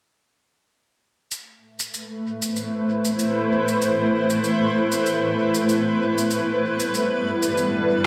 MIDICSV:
0, 0, Header, 1, 3, 480
1, 0, Start_track
1, 0, Key_signature, 0, "minor"
1, 0, Tempo, 625000
1, 1007, Time_signature, 4, 2, 24, 8
1, 6192, End_track
2, 0, Start_track
2, 0, Title_t, "Ambient pad"
2, 0, Program_c, 0, 92
2, 1010, Note_on_c, 0, 57, 73
2, 1256, Note_on_c, 0, 71, 73
2, 1501, Note_on_c, 0, 64, 76
2, 1583, Note_on_c, 0, 72, 71
2, 4843, Note_on_c, 0, 55, 76
2, 4848, Note_off_c, 0, 57, 0
2, 4849, Note_off_c, 0, 72, 0
2, 5280, Note_on_c, 0, 62, 69
2, 5658, Note_on_c, 0, 69, 83
2, 6192, Note_off_c, 0, 55, 0
2, 6192, Note_off_c, 0, 62, 0
2, 6192, Note_off_c, 0, 64, 0
2, 6192, Note_off_c, 0, 69, 0
2, 6192, Note_off_c, 0, 71, 0
2, 6192, End_track
3, 0, Start_track
3, 0, Title_t, "Drums"
3, 1009, Note_on_c, 9, 82, 51
3, 1086, Note_off_c, 9, 82, 0
3, 1379, Note_on_c, 9, 82, 59
3, 1456, Note_off_c, 9, 82, 0
3, 1489, Note_on_c, 9, 82, 46
3, 1566, Note_off_c, 9, 82, 0
3, 1859, Note_on_c, 9, 82, 60
3, 1936, Note_off_c, 9, 82, 0
3, 1968, Note_on_c, 9, 82, 50
3, 2044, Note_off_c, 9, 82, 0
3, 2341, Note_on_c, 9, 82, 60
3, 2418, Note_off_c, 9, 82, 0
3, 2451, Note_on_c, 9, 82, 53
3, 2528, Note_off_c, 9, 82, 0
3, 2827, Note_on_c, 9, 82, 53
3, 2903, Note_off_c, 9, 82, 0
3, 2932, Note_on_c, 9, 82, 53
3, 3009, Note_off_c, 9, 82, 0
3, 3301, Note_on_c, 9, 82, 64
3, 3378, Note_off_c, 9, 82, 0
3, 3410, Note_on_c, 9, 82, 53
3, 3486, Note_off_c, 9, 82, 0
3, 3778, Note_on_c, 9, 82, 61
3, 3854, Note_off_c, 9, 82, 0
3, 3887, Note_on_c, 9, 82, 47
3, 3963, Note_off_c, 9, 82, 0
3, 4259, Note_on_c, 9, 82, 57
3, 4336, Note_off_c, 9, 82, 0
3, 4370, Note_on_c, 9, 82, 54
3, 4447, Note_off_c, 9, 82, 0
3, 4747, Note_on_c, 9, 82, 55
3, 4823, Note_off_c, 9, 82, 0
3, 4843, Note_on_c, 9, 82, 55
3, 4920, Note_off_c, 9, 82, 0
3, 5221, Note_on_c, 9, 82, 59
3, 5298, Note_off_c, 9, 82, 0
3, 5332, Note_on_c, 9, 82, 48
3, 5409, Note_off_c, 9, 82, 0
3, 5703, Note_on_c, 9, 82, 53
3, 5780, Note_off_c, 9, 82, 0
3, 5817, Note_on_c, 9, 82, 48
3, 5894, Note_off_c, 9, 82, 0
3, 6192, End_track
0, 0, End_of_file